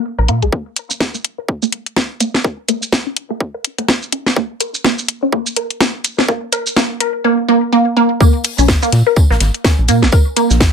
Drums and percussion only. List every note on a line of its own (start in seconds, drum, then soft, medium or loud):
0.28 closed hi-hat medium
0.42 closed hi-hat soft
0.52 kick loud
0.76 closed hi-hat medium
0.76 shaker soft
0.90 shaker soft
1.00 kick loud
1.00 snare medium
1.14 shaker soft
1.24 closed hi-hat medium
1.48 kick loud
1.62 shaker medium
1.72 closed hi-hat medium
1.86 closed hi-hat soft
1.96 kick loud
1.96 snare medium
2.20 closed hi-hat medium
2.20 shaker soft
2.34 snare medium
2.44 kick loud
2.69 closed hi-hat medium
2.69 shaker soft
2.82 shaker soft
2.92 kick loud
2.92 snare loud
3.17 closed hi-hat medium
3.40 kick loud
3.65 closed hi-hat medium
3.78 closed hi-hat soft
3.88 kick loud
3.88 snare medium
4.02 shaker soft
4.12 closed hi-hat loud
4.26 snare medium
4.36 kick loud
4.61 closed hi-hat loud
4.61 shaker soft
4.74 shaker soft
4.84 kick loud
4.84 snare medium
4.98 shaker soft
5.08 closed hi-hat medium
5.32 kick loud
5.46 shaker medium
5.56 closed hi-hat loud
5.70 closed hi-hat soft
5.80 kick loud
5.80 snare medium
6.04 closed hi-hat loud
6.04 shaker soft
6.18 snare medium
6.28 kick loud
6.53 closed hi-hat loud
6.53 shaker soft
6.66 shaker soft
6.76 kick loud
6.76 snare loud
7.00 closed hi-hat medium
8.21 kick loud
8.21 tambourine medium
8.44 closed hi-hat medium
8.44 open hi-hat medium
8.44 shaker soft
8.58 shaker medium
8.68 kick loud
8.68 snare loud
8.68 tambourine medium
8.82 shaker medium
8.92 snare soft
8.92 closed hi-hat medium
8.92 tambourine medium
9.16 kick loud
9.16 tambourine medium
9.31 snare soft
9.40 snare medium
9.40 closed hi-hat medium
9.40 tambourine medium
9.54 closed hi-hat soft
9.64 kick loud
9.64 snare medium
9.64 snare loud
9.64 tambourine medium
9.88 closed hi-hat medium
9.88 tambourine medium
9.88 shaker soft
10.02 snare medium
10.12 kick loud
10.12 tambourine medium
10.36 closed hi-hat medium
10.36 tambourine medium
10.36 shaker soft
10.51 snare soft
10.51 shaker medium
10.61 kick loud
10.61 snare loud
10.61 tambourine medium